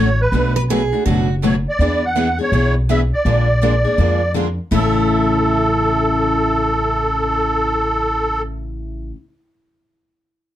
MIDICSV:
0, 0, Header, 1, 6, 480
1, 0, Start_track
1, 0, Key_signature, 3, "major"
1, 0, Tempo, 365854
1, 434, Time_signature, 4, 2, 24, 8
1, 13849, End_track
2, 0, Start_track
2, 0, Title_t, "Accordion"
2, 0, Program_c, 0, 21
2, 0, Note_on_c, 0, 73, 84
2, 270, Note_off_c, 0, 73, 0
2, 276, Note_on_c, 0, 71, 71
2, 711, Note_off_c, 0, 71, 0
2, 1912, Note_on_c, 0, 73, 74
2, 2037, Note_off_c, 0, 73, 0
2, 2222, Note_on_c, 0, 74, 89
2, 2690, Note_off_c, 0, 74, 0
2, 2695, Note_on_c, 0, 78, 92
2, 3120, Note_off_c, 0, 78, 0
2, 3175, Note_on_c, 0, 73, 92
2, 3600, Note_off_c, 0, 73, 0
2, 3814, Note_on_c, 0, 76, 83
2, 3943, Note_off_c, 0, 76, 0
2, 4112, Note_on_c, 0, 74, 83
2, 5671, Note_off_c, 0, 74, 0
2, 6215, Note_on_c, 0, 69, 86
2, 11043, Note_off_c, 0, 69, 0
2, 13849, End_track
3, 0, Start_track
3, 0, Title_t, "Steel-string acoustic guitar"
3, 0, Program_c, 1, 25
3, 454, Note_on_c, 1, 71, 65
3, 720, Note_off_c, 1, 71, 0
3, 930, Note_on_c, 1, 71, 78
3, 1068, Note_off_c, 1, 71, 0
3, 1410, Note_on_c, 1, 71, 69
3, 1678, Note_off_c, 1, 71, 0
3, 1883, Note_on_c, 1, 71, 89
3, 2024, Note_off_c, 1, 71, 0
3, 2376, Note_on_c, 1, 71, 63
3, 2641, Note_off_c, 1, 71, 0
3, 2837, Note_on_c, 1, 71, 78
3, 2981, Note_off_c, 1, 71, 0
3, 3327, Note_on_c, 1, 71, 64
3, 3596, Note_off_c, 1, 71, 0
3, 3806, Note_on_c, 1, 71, 88
3, 3946, Note_off_c, 1, 71, 0
3, 4274, Note_on_c, 1, 56, 64
3, 4284, Note_on_c, 1, 65, 64
3, 4285, Note_on_c, 1, 70, 65
3, 4550, Note_off_c, 1, 56, 0
3, 4555, Note_off_c, 1, 65, 0
3, 4555, Note_off_c, 1, 70, 0
3, 4759, Note_on_c, 1, 56, 75
3, 4765, Note_on_c, 1, 65, 80
3, 4767, Note_on_c, 1, 70, 77
3, 4902, Note_off_c, 1, 56, 0
3, 4905, Note_off_c, 1, 65, 0
3, 4906, Note_off_c, 1, 70, 0
3, 5249, Note_on_c, 1, 56, 54
3, 5256, Note_on_c, 1, 65, 63
3, 5260, Note_on_c, 1, 70, 60
3, 5518, Note_off_c, 1, 56, 0
3, 5521, Note_off_c, 1, 65, 0
3, 5523, Note_off_c, 1, 70, 0
3, 5723, Note_on_c, 1, 56, 77
3, 5728, Note_on_c, 1, 65, 82
3, 5733, Note_on_c, 1, 70, 80
3, 5865, Note_off_c, 1, 56, 0
3, 5867, Note_off_c, 1, 65, 0
3, 5869, Note_off_c, 1, 70, 0
3, 6225, Note_on_c, 1, 64, 81
3, 12019, Note_off_c, 1, 64, 0
3, 13849, End_track
4, 0, Start_track
4, 0, Title_t, "Steel-string acoustic guitar"
4, 0, Program_c, 2, 25
4, 735, Note_on_c, 2, 71, 91
4, 800, Note_off_c, 2, 71, 0
4, 922, Note_on_c, 2, 68, 78
4, 1380, Note_off_c, 2, 68, 0
4, 1385, Note_on_c, 2, 66, 68
4, 1750, Note_off_c, 2, 66, 0
4, 6190, Note_on_c, 2, 64, 58
4, 11949, Note_off_c, 2, 64, 0
4, 13849, End_track
5, 0, Start_track
5, 0, Title_t, "Steel-string acoustic guitar"
5, 0, Program_c, 3, 25
5, 429, Note_on_c, 3, 47, 66
5, 433, Note_on_c, 3, 54, 68
5, 434, Note_on_c, 3, 57, 64
5, 443, Note_on_c, 3, 62, 68
5, 445, Note_on_c, 3, 66, 70
5, 708, Note_off_c, 3, 47, 0
5, 710, Note_off_c, 3, 54, 0
5, 710, Note_off_c, 3, 57, 0
5, 715, Note_off_c, 3, 62, 0
5, 716, Note_off_c, 3, 66, 0
5, 923, Note_on_c, 3, 47, 73
5, 926, Note_on_c, 3, 54, 80
5, 927, Note_on_c, 3, 57, 80
5, 932, Note_on_c, 3, 62, 83
5, 939, Note_on_c, 3, 66, 81
5, 1065, Note_off_c, 3, 47, 0
5, 1066, Note_off_c, 3, 54, 0
5, 1067, Note_off_c, 3, 57, 0
5, 1069, Note_off_c, 3, 62, 0
5, 1073, Note_off_c, 3, 66, 0
5, 1214, Note_on_c, 3, 66, 52
5, 1228, Note_on_c, 3, 62, 46
5, 1238, Note_on_c, 3, 57, 43
5, 1387, Note_off_c, 3, 66, 0
5, 1395, Note_off_c, 3, 62, 0
5, 1400, Note_off_c, 3, 57, 0
5, 1408, Note_on_c, 3, 47, 63
5, 1414, Note_on_c, 3, 54, 56
5, 1417, Note_on_c, 3, 57, 65
5, 1417, Note_on_c, 3, 62, 61
5, 1420, Note_on_c, 3, 66, 62
5, 1677, Note_off_c, 3, 47, 0
5, 1680, Note_off_c, 3, 54, 0
5, 1681, Note_off_c, 3, 57, 0
5, 1681, Note_off_c, 3, 62, 0
5, 1683, Note_off_c, 3, 66, 0
5, 1876, Note_on_c, 3, 47, 70
5, 1885, Note_on_c, 3, 54, 74
5, 1888, Note_on_c, 3, 57, 78
5, 1888, Note_on_c, 3, 62, 75
5, 1896, Note_on_c, 3, 66, 90
5, 2021, Note_off_c, 3, 47, 0
5, 2025, Note_off_c, 3, 54, 0
5, 2027, Note_off_c, 3, 57, 0
5, 2027, Note_off_c, 3, 62, 0
5, 2031, Note_off_c, 3, 66, 0
5, 2371, Note_on_c, 3, 52, 61
5, 2378, Note_on_c, 3, 59, 67
5, 2379, Note_on_c, 3, 62, 69
5, 2385, Note_on_c, 3, 68, 65
5, 2638, Note_off_c, 3, 52, 0
5, 2642, Note_off_c, 3, 59, 0
5, 2643, Note_off_c, 3, 62, 0
5, 2645, Note_off_c, 3, 68, 0
5, 2842, Note_on_c, 3, 52, 77
5, 2848, Note_on_c, 3, 59, 73
5, 2850, Note_on_c, 3, 62, 79
5, 2859, Note_on_c, 3, 68, 80
5, 2984, Note_off_c, 3, 52, 0
5, 2987, Note_off_c, 3, 59, 0
5, 2988, Note_off_c, 3, 62, 0
5, 2992, Note_off_c, 3, 68, 0
5, 3128, Note_on_c, 3, 68, 53
5, 3142, Note_on_c, 3, 62, 49
5, 3154, Note_on_c, 3, 59, 42
5, 3303, Note_off_c, 3, 59, 0
5, 3304, Note_off_c, 3, 68, 0
5, 3307, Note_off_c, 3, 62, 0
5, 3313, Note_on_c, 3, 52, 58
5, 3319, Note_on_c, 3, 59, 64
5, 3323, Note_on_c, 3, 62, 61
5, 3327, Note_on_c, 3, 68, 68
5, 3589, Note_off_c, 3, 52, 0
5, 3592, Note_off_c, 3, 59, 0
5, 3594, Note_off_c, 3, 62, 0
5, 3596, Note_off_c, 3, 68, 0
5, 3796, Note_on_c, 3, 52, 75
5, 3804, Note_on_c, 3, 59, 71
5, 3810, Note_on_c, 3, 62, 81
5, 3811, Note_on_c, 3, 68, 81
5, 3940, Note_off_c, 3, 52, 0
5, 3945, Note_off_c, 3, 59, 0
5, 3948, Note_off_c, 3, 62, 0
5, 3948, Note_off_c, 3, 68, 0
5, 4271, Note_on_c, 3, 50, 63
5, 4277, Note_on_c, 3, 53, 64
5, 4281, Note_on_c, 3, 58, 64
5, 4282, Note_on_c, 3, 62, 66
5, 4285, Note_on_c, 3, 68, 63
5, 4549, Note_off_c, 3, 50, 0
5, 4551, Note_off_c, 3, 53, 0
5, 4553, Note_off_c, 3, 58, 0
5, 4554, Note_off_c, 3, 62, 0
5, 4555, Note_off_c, 3, 68, 0
5, 4744, Note_on_c, 3, 50, 76
5, 4750, Note_on_c, 3, 53, 73
5, 4758, Note_on_c, 3, 58, 74
5, 4759, Note_on_c, 3, 62, 80
5, 4763, Note_on_c, 3, 68, 69
5, 4895, Note_off_c, 3, 50, 0
5, 4898, Note_off_c, 3, 53, 0
5, 4902, Note_off_c, 3, 58, 0
5, 4902, Note_off_c, 3, 62, 0
5, 4904, Note_off_c, 3, 68, 0
5, 5043, Note_on_c, 3, 68, 55
5, 5058, Note_on_c, 3, 62, 45
5, 5071, Note_on_c, 3, 58, 40
5, 5209, Note_off_c, 3, 58, 0
5, 5213, Note_off_c, 3, 62, 0
5, 5217, Note_off_c, 3, 68, 0
5, 5219, Note_on_c, 3, 50, 60
5, 5224, Note_on_c, 3, 53, 57
5, 5225, Note_on_c, 3, 58, 61
5, 5229, Note_on_c, 3, 62, 63
5, 5232, Note_on_c, 3, 68, 58
5, 5502, Note_off_c, 3, 50, 0
5, 5505, Note_off_c, 3, 53, 0
5, 5505, Note_off_c, 3, 58, 0
5, 5508, Note_off_c, 3, 62, 0
5, 5509, Note_off_c, 3, 68, 0
5, 5698, Note_on_c, 3, 50, 77
5, 5699, Note_on_c, 3, 53, 69
5, 5699, Note_on_c, 3, 58, 77
5, 5707, Note_on_c, 3, 62, 73
5, 5708, Note_on_c, 3, 68, 76
5, 5852, Note_off_c, 3, 50, 0
5, 5852, Note_off_c, 3, 53, 0
5, 5852, Note_off_c, 3, 58, 0
5, 5856, Note_off_c, 3, 62, 0
5, 5857, Note_off_c, 3, 68, 0
5, 6178, Note_on_c, 3, 45, 71
5, 6186, Note_on_c, 3, 49, 82
5, 6196, Note_on_c, 3, 52, 77
5, 6202, Note_on_c, 3, 57, 71
5, 6212, Note_on_c, 3, 61, 81
5, 11996, Note_off_c, 3, 45, 0
5, 12000, Note_off_c, 3, 49, 0
5, 12005, Note_off_c, 3, 52, 0
5, 12008, Note_off_c, 3, 57, 0
5, 12013, Note_off_c, 3, 61, 0
5, 13849, End_track
6, 0, Start_track
6, 0, Title_t, "Upright bass"
6, 0, Program_c, 4, 32
6, 0, Note_on_c, 4, 33, 68
6, 356, Note_off_c, 4, 33, 0
6, 419, Note_on_c, 4, 35, 81
6, 1193, Note_off_c, 4, 35, 0
6, 1389, Note_on_c, 4, 30, 75
6, 2158, Note_off_c, 4, 30, 0
6, 2347, Note_on_c, 4, 40, 76
6, 3117, Note_off_c, 4, 40, 0
6, 3306, Note_on_c, 4, 35, 73
6, 4077, Note_off_c, 4, 35, 0
6, 4265, Note_on_c, 4, 34, 76
6, 5036, Note_off_c, 4, 34, 0
6, 5224, Note_on_c, 4, 41, 71
6, 5996, Note_off_c, 4, 41, 0
6, 6184, Note_on_c, 4, 33, 78
6, 11947, Note_off_c, 4, 33, 0
6, 13849, End_track
0, 0, End_of_file